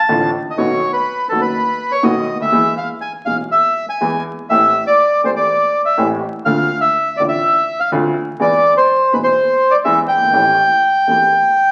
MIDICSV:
0, 0, Header, 1, 3, 480
1, 0, Start_track
1, 0, Key_signature, 0, "minor"
1, 0, Tempo, 488202
1, 564, Time_signature, 4, 2, 24, 8
1, 11519, End_track
2, 0, Start_track
2, 0, Title_t, "Bandoneon"
2, 0, Program_c, 0, 23
2, 0, Note_on_c, 0, 81, 81
2, 298, Note_off_c, 0, 81, 0
2, 497, Note_on_c, 0, 75, 61
2, 564, Note_off_c, 0, 75, 0
2, 569, Note_on_c, 0, 73, 68
2, 901, Note_off_c, 0, 73, 0
2, 913, Note_on_c, 0, 71, 73
2, 1251, Note_off_c, 0, 71, 0
2, 1269, Note_on_c, 0, 69, 59
2, 1386, Note_off_c, 0, 69, 0
2, 1388, Note_on_c, 0, 71, 67
2, 1884, Note_on_c, 0, 73, 74
2, 1887, Note_off_c, 0, 71, 0
2, 2002, Note_on_c, 0, 75, 69
2, 2005, Note_off_c, 0, 73, 0
2, 2335, Note_off_c, 0, 75, 0
2, 2374, Note_on_c, 0, 76, 79
2, 2702, Note_off_c, 0, 76, 0
2, 2729, Note_on_c, 0, 77, 69
2, 2836, Note_off_c, 0, 77, 0
2, 2963, Note_on_c, 0, 80, 67
2, 3072, Note_off_c, 0, 80, 0
2, 3200, Note_on_c, 0, 77, 67
2, 3310, Note_off_c, 0, 77, 0
2, 3458, Note_on_c, 0, 76, 75
2, 3793, Note_off_c, 0, 76, 0
2, 3828, Note_on_c, 0, 80, 66
2, 4162, Note_off_c, 0, 80, 0
2, 4422, Note_on_c, 0, 76, 78
2, 4761, Note_off_c, 0, 76, 0
2, 4787, Note_on_c, 0, 74, 72
2, 5125, Note_off_c, 0, 74, 0
2, 5164, Note_on_c, 0, 72, 62
2, 5215, Note_off_c, 0, 72, 0
2, 5272, Note_on_c, 0, 74, 64
2, 5718, Note_off_c, 0, 74, 0
2, 5755, Note_on_c, 0, 76, 64
2, 5976, Note_off_c, 0, 76, 0
2, 6344, Note_on_c, 0, 77, 87
2, 6680, Note_off_c, 0, 77, 0
2, 6696, Note_on_c, 0, 76, 75
2, 7049, Note_on_c, 0, 74, 64
2, 7072, Note_off_c, 0, 76, 0
2, 7106, Note_off_c, 0, 74, 0
2, 7163, Note_on_c, 0, 76, 77
2, 7665, Note_off_c, 0, 76, 0
2, 7670, Note_on_c, 0, 77, 69
2, 7775, Note_off_c, 0, 77, 0
2, 8271, Note_on_c, 0, 74, 76
2, 8593, Note_off_c, 0, 74, 0
2, 8622, Note_on_c, 0, 72, 68
2, 8979, Note_on_c, 0, 71, 66
2, 8980, Note_off_c, 0, 72, 0
2, 9029, Note_off_c, 0, 71, 0
2, 9079, Note_on_c, 0, 72, 71
2, 9544, Note_on_c, 0, 74, 76
2, 9569, Note_off_c, 0, 72, 0
2, 9600, Note_off_c, 0, 74, 0
2, 9680, Note_on_c, 0, 76, 74
2, 9826, Note_off_c, 0, 76, 0
2, 9911, Note_on_c, 0, 79, 84
2, 11519, Note_off_c, 0, 79, 0
2, 11519, End_track
3, 0, Start_track
3, 0, Title_t, "Upright piano"
3, 0, Program_c, 1, 0
3, 87, Note_on_c, 1, 33, 79
3, 87, Note_on_c, 1, 45, 76
3, 88, Note_on_c, 1, 50, 62
3, 91, Note_on_c, 1, 60, 59
3, 92, Note_on_c, 1, 57, 62
3, 96, Note_on_c, 1, 65, 73
3, 287, Note_off_c, 1, 33, 0
3, 287, Note_off_c, 1, 50, 0
3, 288, Note_off_c, 1, 45, 0
3, 289, Note_off_c, 1, 57, 0
3, 289, Note_off_c, 1, 60, 0
3, 291, Note_off_c, 1, 65, 0
3, 562, Note_on_c, 1, 51, 58
3, 570, Note_on_c, 1, 47, 71
3, 570, Note_on_c, 1, 57, 52
3, 570, Note_on_c, 1, 59, 56
3, 571, Note_on_c, 1, 35, 70
3, 572, Note_on_c, 1, 66, 65
3, 764, Note_off_c, 1, 51, 0
3, 768, Note_off_c, 1, 47, 0
3, 768, Note_off_c, 1, 57, 0
3, 768, Note_off_c, 1, 59, 0
3, 769, Note_off_c, 1, 35, 0
3, 769, Note_off_c, 1, 66, 0
3, 1291, Note_on_c, 1, 51, 44
3, 1295, Note_on_c, 1, 42, 49
3, 1296, Note_on_c, 1, 57, 37
3, 1297, Note_on_c, 1, 30, 50
3, 1299, Note_on_c, 1, 66, 49
3, 1300, Note_on_c, 1, 59, 38
3, 1486, Note_off_c, 1, 51, 0
3, 1489, Note_off_c, 1, 42, 0
3, 1489, Note_off_c, 1, 57, 0
3, 1490, Note_off_c, 1, 30, 0
3, 1491, Note_off_c, 1, 59, 0
3, 1491, Note_off_c, 1, 66, 0
3, 1997, Note_on_c, 1, 35, 76
3, 1997, Note_on_c, 1, 47, 73
3, 1997, Note_on_c, 1, 51, 61
3, 1998, Note_on_c, 1, 57, 61
3, 1999, Note_on_c, 1, 59, 59
3, 2004, Note_on_c, 1, 66, 72
3, 2199, Note_off_c, 1, 35, 0
3, 2199, Note_off_c, 1, 47, 0
3, 2200, Note_off_c, 1, 51, 0
3, 2200, Note_off_c, 1, 57, 0
3, 2200, Note_off_c, 1, 59, 0
3, 2203, Note_off_c, 1, 66, 0
3, 2297, Note_on_c, 1, 37, 39
3, 2358, Note_off_c, 1, 37, 0
3, 2361, Note_on_c, 1, 38, 47
3, 2416, Note_on_c, 1, 39, 47
3, 2419, Note_off_c, 1, 38, 0
3, 2473, Note_on_c, 1, 52, 63
3, 2476, Note_on_c, 1, 40, 69
3, 2476, Note_on_c, 1, 59, 54
3, 2477, Note_off_c, 1, 39, 0
3, 2477, Note_on_c, 1, 56, 51
3, 2483, Note_on_c, 1, 68, 61
3, 2679, Note_off_c, 1, 40, 0
3, 2679, Note_off_c, 1, 56, 0
3, 2679, Note_off_c, 1, 59, 0
3, 2680, Note_off_c, 1, 52, 0
3, 2682, Note_off_c, 1, 68, 0
3, 3202, Note_on_c, 1, 52, 39
3, 3204, Note_on_c, 1, 59, 37
3, 3207, Note_on_c, 1, 47, 46
3, 3207, Note_on_c, 1, 56, 38
3, 3208, Note_on_c, 1, 35, 44
3, 3214, Note_on_c, 1, 68, 48
3, 3407, Note_off_c, 1, 52, 0
3, 3408, Note_off_c, 1, 59, 0
3, 3409, Note_off_c, 1, 47, 0
3, 3409, Note_off_c, 1, 56, 0
3, 3410, Note_off_c, 1, 35, 0
3, 3413, Note_off_c, 1, 68, 0
3, 3939, Note_on_c, 1, 52, 69
3, 3943, Note_on_c, 1, 59, 53
3, 3944, Note_on_c, 1, 40, 73
3, 3945, Note_on_c, 1, 56, 53
3, 3948, Note_on_c, 1, 68, 67
3, 4144, Note_off_c, 1, 59, 0
3, 4145, Note_off_c, 1, 40, 0
3, 4145, Note_off_c, 1, 52, 0
3, 4145, Note_off_c, 1, 56, 0
3, 4147, Note_off_c, 1, 68, 0
3, 4423, Note_on_c, 1, 52, 50
3, 4424, Note_on_c, 1, 45, 60
3, 4430, Note_on_c, 1, 57, 49
3, 4432, Note_on_c, 1, 33, 61
3, 4432, Note_on_c, 1, 60, 47
3, 4433, Note_on_c, 1, 67, 55
3, 4627, Note_off_c, 1, 52, 0
3, 4628, Note_off_c, 1, 45, 0
3, 4630, Note_off_c, 1, 57, 0
3, 4632, Note_off_c, 1, 33, 0
3, 4632, Note_off_c, 1, 60, 0
3, 4632, Note_off_c, 1, 67, 0
3, 5149, Note_on_c, 1, 57, 39
3, 5150, Note_on_c, 1, 28, 45
3, 5150, Note_on_c, 1, 52, 42
3, 5150, Note_on_c, 1, 60, 38
3, 5151, Note_on_c, 1, 40, 44
3, 5154, Note_on_c, 1, 67, 43
3, 5352, Note_off_c, 1, 28, 0
3, 5352, Note_off_c, 1, 52, 0
3, 5352, Note_off_c, 1, 57, 0
3, 5353, Note_off_c, 1, 40, 0
3, 5353, Note_off_c, 1, 60, 0
3, 5355, Note_off_c, 1, 67, 0
3, 5874, Note_on_c, 1, 52, 65
3, 5876, Note_on_c, 1, 45, 75
3, 5876, Note_on_c, 1, 57, 59
3, 5878, Note_on_c, 1, 33, 76
3, 5879, Note_on_c, 1, 60, 56
3, 5880, Note_on_c, 1, 67, 65
3, 6073, Note_off_c, 1, 52, 0
3, 6074, Note_off_c, 1, 45, 0
3, 6074, Note_off_c, 1, 57, 0
3, 6075, Note_off_c, 1, 33, 0
3, 6076, Note_off_c, 1, 60, 0
3, 6076, Note_off_c, 1, 67, 0
3, 6349, Note_on_c, 1, 50, 70
3, 6350, Note_on_c, 1, 57, 53
3, 6358, Note_on_c, 1, 60, 49
3, 6359, Note_on_c, 1, 38, 60
3, 6360, Note_on_c, 1, 65, 64
3, 6550, Note_off_c, 1, 57, 0
3, 6552, Note_off_c, 1, 50, 0
3, 6554, Note_off_c, 1, 38, 0
3, 6554, Note_off_c, 1, 60, 0
3, 6554, Note_off_c, 1, 65, 0
3, 7077, Note_on_c, 1, 33, 51
3, 7077, Note_on_c, 1, 50, 43
3, 7077, Note_on_c, 1, 57, 40
3, 7080, Note_on_c, 1, 45, 51
3, 7081, Note_on_c, 1, 60, 42
3, 7085, Note_on_c, 1, 65, 46
3, 7273, Note_off_c, 1, 33, 0
3, 7273, Note_off_c, 1, 50, 0
3, 7273, Note_off_c, 1, 57, 0
3, 7274, Note_off_c, 1, 45, 0
3, 7274, Note_off_c, 1, 60, 0
3, 7276, Note_off_c, 1, 65, 0
3, 7786, Note_on_c, 1, 50, 78
3, 7788, Note_on_c, 1, 38, 82
3, 7790, Note_on_c, 1, 57, 59
3, 7791, Note_on_c, 1, 65, 77
3, 7792, Note_on_c, 1, 60, 61
3, 7983, Note_off_c, 1, 38, 0
3, 7984, Note_off_c, 1, 57, 0
3, 7985, Note_off_c, 1, 50, 0
3, 7985, Note_off_c, 1, 60, 0
3, 7985, Note_off_c, 1, 65, 0
3, 8255, Note_on_c, 1, 52, 75
3, 8259, Note_on_c, 1, 56, 57
3, 8260, Note_on_c, 1, 40, 72
3, 8262, Note_on_c, 1, 59, 54
3, 8266, Note_on_c, 1, 68, 64
3, 8455, Note_off_c, 1, 40, 0
3, 8455, Note_off_c, 1, 56, 0
3, 8456, Note_off_c, 1, 52, 0
3, 8456, Note_off_c, 1, 59, 0
3, 8458, Note_off_c, 1, 68, 0
3, 8972, Note_on_c, 1, 56, 41
3, 8974, Note_on_c, 1, 52, 43
3, 8975, Note_on_c, 1, 47, 55
3, 8977, Note_on_c, 1, 35, 50
3, 8979, Note_on_c, 1, 59, 38
3, 8981, Note_on_c, 1, 68, 48
3, 9166, Note_off_c, 1, 56, 0
3, 9168, Note_off_c, 1, 47, 0
3, 9168, Note_off_c, 1, 52, 0
3, 9169, Note_off_c, 1, 35, 0
3, 9170, Note_off_c, 1, 59, 0
3, 9171, Note_off_c, 1, 68, 0
3, 9682, Note_on_c, 1, 56, 64
3, 9684, Note_on_c, 1, 59, 59
3, 9686, Note_on_c, 1, 40, 70
3, 9686, Note_on_c, 1, 52, 80
3, 9689, Note_on_c, 1, 68, 72
3, 9879, Note_off_c, 1, 56, 0
3, 9880, Note_off_c, 1, 59, 0
3, 9881, Note_off_c, 1, 40, 0
3, 9882, Note_off_c, 1, 52, 0
3, 9883, Note_off_c, 1, 68, 0
3, 9986, Note_on_c, 1, 30, 40
3, 10040, Note_off_c, 1, 30, 0
3, 10048, Note_on_c, 1, 31, 41
3, 10101, Note_off_c, 1, 31, 0
3, 10108, Note_on_c, 1, 32, 51
3, 10157, Note_on_c, 1, 52, 57
3, 10157, Note_on_c, 1, 57, 51
3, 10159, Note_on_c, 1, 45, 67
3, 10161, Note_off_c, 1, 32, 0
3, 10161, Note_on_c, 1, 33, 70
3, 10161, Note_on_c, 1, 60, 51
3, 10162, Note_on_c, 1, 67, 64
3, 10357, Note_off_c, 1, 52, 0
3, 10357, Note_off_c, 1, 57, 0
3, 10358, Note_off_c, 1, 45, 0
3, 10359, Note_off_c, 1, 33, 0
3, 10359, Note_off_c, 1, 60, 0
3, 10360, Note_off_c, 1, 67, 0
3, 10886, Note_on_c, 1, 52, 42
3, 10887, Note_on_c, 1, 67, 45
3, 10888, Note_on_c, 1, 40, 45
3, 10888, Note_on_c, 1, 57, 39
3, 10890, Note_on_c, 1, 28, 50
3, 10892, Note_on_c, 1, 60, 37
3, 11084, Note_off_c, 1, 52, 0
3, 11085, Note_off_c, 1, 40, 0
3, 11085, Note_off_c, 1, 57, 0
3, 11085, Note_off_c, 1, 67, 0
3, 11086, Note_off_c, 1, 28, 0
3, 11087, Note_off_c, 1, 60, 0
3, 11519, End_track
0, 0, End_of_file